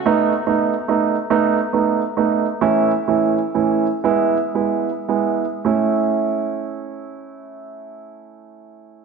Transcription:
\new Staff \with { instrumentName = "Grand piano" } { \time 6/8 \key a \major \tempo 4. = 40 <a b dis'>8 <a b dis'>8 <a b dis'>8 <a b dis'>8 <a b dis'>8 <a b dis'>8 | <e a cis' e'>8 <e a cis' e'>8 <e a cis' e'>8 <gis b e'>8 <gis b e'>8 <gis b e'>8 | <a cis' e'>2. | }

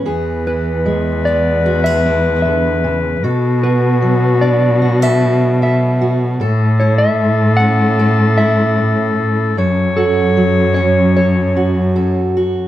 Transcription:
<<
  \new Staff \with { instrumentName = "Clean electric guitar" } { \time 4/4 \key e \mixolydian \tempo 4 = 76 r8 b'4 d''8. e''8. e''8. r16 | r8 b'4 d''8. e''8. e''8. r16 | r8 cis''16 e''8. fis''4 e''4 r8 | r8 a'4 cis''8 cis''4. r8 | }
  \new Staff \with { instrumentName = "Clarinet" } { \time 4/4 \key e \mixolydian b'1 | fis'2.~ fis'8 r8 | a'1 | cis''2.~ cis''8 r8 | }
  \new Staff \with { instrumentName = "Steel-string acoustic guitar" } { \time 4/4 \key e \mixolydian << { <b gis'>8 e'4 b8 fis'16 gis'16 e'4. | a'8 fis'4 d'8 fis'16 a'16 fis'8 a'8 fis'8 | a'8 e'4 cis'8 a'8 e'4. | a'8 fis'4 cis'8 a'8 fis'8 a'8 fis'8 | } \\ { e4 gis2 d8 cis8 | b,4 fis2. | a,2. a,8 r8 | fis,4 fis2. | } >> }
  \new Staff \with { instrumentName = "Cello" } { \clef bass \time 4/4 \key e \mixolydian e,1 | b,1 | a,1 | fis,1 | }
>>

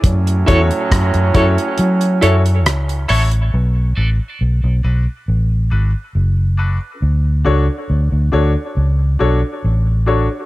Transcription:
<<
  \new Staff \with { instrumentName = "Clean electric guitar" } { \time 4/4 \key b \minor \tempo 4 = 69 r8 <e' a' cis''>8 r8 <e' a' cis''>8 r8 <e' a' cis''>8 r8 <e' a' cis''>8 | r8 <fis' a' d''>8 r2. | r1 | }
  \new Staff \with { instrumentName = "Upright piano" } { \time 4/4 \key b \minor r8 <e' fis' a' cis''>16 r8. <e' fis' a' cis''>16 r8. <e' fis' a' cis''>16 r8. <e' fis' a' cis''>16 <a' cis''>16 | r8 <d' fis' a' b'>16 r8. <d' fis' a' b'>16 r8. <d' fis' a' b'>16 r8. <d' fis' a' b'>16 <a' b'>16 | r8 <d' fis' a' cis''>16 r8. <d' fis' a' cis''>16 r8. <d' fis' a' cis''>16 r8. <d' fis' a' cis''>16 <a' cis''>16 | }
  \new Staff \with { instrumentName = "Trombone section" } { \clef bass \time 4/4 \key b \minor <a, fis cis'>2.~ <a, fis cis'>8 r8 | r1 | r1 | }
  \new Staff \with { instrumentName = "Fingered electric bass" } { \clef bass \time 4/4 \key b \minor fis,8 e,16 r16 fis,16 fis,16 fis,16 r16 fis8 fis,8 cis,8 a,,8 | b,,8 a,,16 r16 b,,16 b,,16 b,,16 r16 a,,8 gis,,16 r16 fis,,8. r16 | d,8 cis,16 r16 d,16 d,16 d,16 r16 cis,8 b,,16 r16 a,,8. r16 | }
  \new DrumStaff \with { instrumentName = "Drums" } \drummode { \time 4/4 <hh bd>16 hh16 <hh bd>16 hh16 <hh bd ss>16 hh16 <hh bd>16 hh16 hh16 hh16 hh16 hh16 <hh ss>16 hh16 hho16 hh16 | r4 r4 r4 r4 | r4 r4 r4 r4 | }
>>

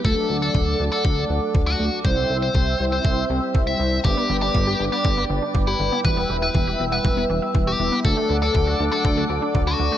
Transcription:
<<
  \new Staff \with { instrumentName = "Analog synth pad" } { \time 4/4 \key d \mixolydian \tempo 4 = 120 << { <d'' d'''>1 | <e'' e'''>1 | <d'' d'''>1 | <e'' e'''>1 |
<d'' d'''>1 | } \\ { <a' fis''>1 | <c'' g''>1 | <b' g''>1~ | <b' g''>1 |
<a' fis''>1 | } >> }
  \new Staff \with { instrumentName = "Lead electric guitar" } { \time 4/4 \key d \mixolydian a'8 r16 a'8. r16 a'8 r4 fis'8 r16 | c''8 r16 c''8. r16 c''8 r4 e''8 r16 | g'8 r16 g'8. r16 g'8 r4 e'8 r16 | b'8 r16 b'8. r16 b'8 r4 g'8 r16 |
a'8 r16 a'8. r16 a'8 r4 fis'8 r16 | }
  \new Staff \with { instrumentName = "Analog polysynth" } { \time 4/4 \key d \mixolydian <fis a d' a'>4. <fis a d' a'>2~ <fis a d' a'>8 | <g c' e' c''>4. <g c' e' c''>4 <g c' e' e''>8. <g c' e' c''>8. | <g b d' b'>4. <g b d' b'>2~ <g b d' b'>8 | <g b e'>4. <g b e' b'>2 <g b e' b'>8 |
<fis a d' a'>4. <fis a d' a'>2~ <fis a d' a'>8 | }
  \new Staff \with { instrumentName = "Synth arpeggio sound" } { \clef bass \time 4/4 \key d \mixolydian r1 | r1 | d16 b16 d16 d'16 d16 g'16 d16 b16 d16 b16 d16 d'16 d16 g'16 d16 b16 | e16 b16 e16 e'16 e16 g'16 e16 b16 e16 b16 e16 e'16 e16 g'16 e16 b16 |
d16 a16 d16 d'16 d16 fis'16 d16 a16 d16 a16 d16 d'16 d16 fis'16 d16 a16 | }
  \new Staff \with { instrumentName = "Analog synth bass" } { \clef bass \time 4/4 \key d \mixolydian d,8 d,8 d,8 d,8 d,8 d,8 d,8 d,8 | c,8 c,8 c,8 c,8 c,8 c,8 c,8 c,8 | g,,8 g,,8 g,,8 g,,8 g,,8 g,,8 g,,8 g,,8 | e,,8 e,,8 e,,8 e,,8 e,,8 e,,8 e,,8 e,,8 |
d,8 d,8 d,8 d,8 d,8 d,8 d,8 d,8 | }
  \new DrumStaff \with { instrumentName = "Drums" } \drummode { \time 4/4 bd4 bd4 bd4 bd4 | bd4 bd4 bd4 bd4 | bd4 bd4 bd4 bd4 | bd4 bd4 bd4 bd4 |
bd4 bd4 bd4 bd4 | }
>>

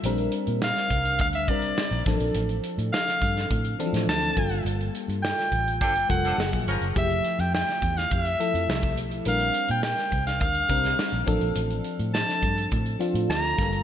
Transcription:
<<
  \new Staff \with { instrumentName = "Soprano saxophone" } { \time 4/4 \key d \minor \tempo 4 = 104 r4 f''4 f''16 e''16 d''4 r8 | r4 f''4 r4 a''4 | r4 g''4 g''8 ges''4 r8 | e''8. g''16 g''8. f''16 e''4. r8 |
f''8. g''16 g''8. f''16 f''4. r8 | r4 a''4 r4 bes''4 | }
  \new Staff \with { instrumentName = "Horn section" } { \time 4/4 \key d \minor r1 | r1 | r2 <f d' a'>16 r8 <f d' a'>16 r8 <f des' bes'>8 | r1 |
r1 | r1 | }
  \new Staff \with { instrumentName = "FM electric piano" } { \time 4/4 \key d \minor <g c' d' bes'>4. r4 <g c' d' bes'>4 <f c' d' a'>8~ | <f c' d' a'>4 r4. <e f c' d' a'>4 <g bes f' a'>8~ | <g bes f' a'>4 r4. <g bes f' a'>8 <ges bes f' aes'>4 | <f a e' g'>4. r4 <f a e' a'>4 r8 |
<g c' d' bes'>4. r4 <g c' d' bes'>4 <f c' d' a'>8~ | <f c' d' a'>4 r4. <f c' d' f'>4 <g bes f' a'>8 | }
  \new Staff \with { instrumentName = "Fingered electric bass" } { \clef bass \time 4/4 \key d \minor bes,,8 r16 bes,8 r16 c,8 d,8 c,8 r16 bes,,16 a,,16 bes,,16 | a,,8 r16 a,16 r8 g,8 a,8 r16 a,16 d,8 g,,8 | g,,8 r16 g,8 r16 a,,8 g,,8 f,,8 ges,,16 bes,,16 g,,16 ges,,16 | f,,8 r16 f,8 r16 e,8 f,8 r16 f,16 c,8 b,,8 |
bes,,8 r16 bes,8 r16 c,8 d,8 c,8 r16 bes,,16 a,,16 bes,,16 | a,,8 r16 a,8 r16 g,8 a,8 r16 a,16 d,8 g,,8 | }
  \new DrumStaff \with { instrumentName = "Drums" } \drummode { \time 4/4 hh16 hh16 hh16 hh16 sn16 <hh sn>16 <hh bd>16 hh16 <hh bd>16 hh16 <hh bd>16 hh16 sn16 hh16 <hh bd sn>16 hh16 | hh16 hh16 hh16 hh16 sn16 <hh sn>16 <hh bd>16 <hh sn>16 <hh bd>16 hh16 hh16 <hh sn>16 sn16 hh16 <hh bd>16 hh16 | hh16 hh16 hh16 hh16 sn16 <hh sn>16 <hh bd>16 hh16 <hh bd>16 hh16 <hh bd>16 hh16 sn16 <hh bd>16 hh16 hh16 | <hh bd>16 hh16 hh16 hh16 sn16 <hh sn>16 <hh bd>16 <hh sn>16 <hh bd>16 hh16 hh16 hh16 sn16 <hh bd>16 hh16 hh16 |
hh16 hh16 hh16 hh16 sn16 <hh sn>16 <hh bd>16 <hh sn>16 <hh bd>16 hh16 <hh bd>16 <hh sn>16 sn16 hh16 <hh bd>16 hh16 | hh16 hh16 hh16 hh16 sn16 <hh sn>16 <hh bd>16 hh16 <hh bd>16 hh16 hh16 hh16 sn16 hh16 <hh bd sn>16 hh16 | }
>>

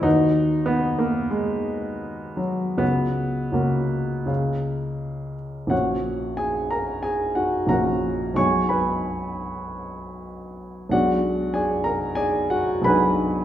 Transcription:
\new Staff \with { instrumentName = "Upright piano" } { \time 4/4 \key fis \major \tempo 4 = 92 << { dis'4 b8 ais8 gis4. fis8 | b4 ais2~ ais8 r8 | <fis' cis'' fis''>4 <gis' gis''>8 <ais' ais''>8 <gis' gis''>8 <fis' fis''>8 <ais' fis'' ais''>4 | <cis'' gis'' cis'''>8 <b' gis'' b''>2.~ <b' gis'' b''>8 |
<fis' d'' fis''>4 <gis' d'' gis''>8 <ais' ais''>8 <gis' d'' gis''>8 <fis' fis''>8 <b' gis'' b''>4 | } \\ { <dis, fis' b' fis''>1 | <cis, fis' cis'' fis''>4 <cis, fis' cis'' fis''>4 <cis, gis' cis'' eis''>2 | <ais,, ais cis'>2. <ais,, ais cis' fis'>4 | <b,, gis b fis'>1 |
<b,, gis b d'>2. <b,, gis b d'>4 | } >> }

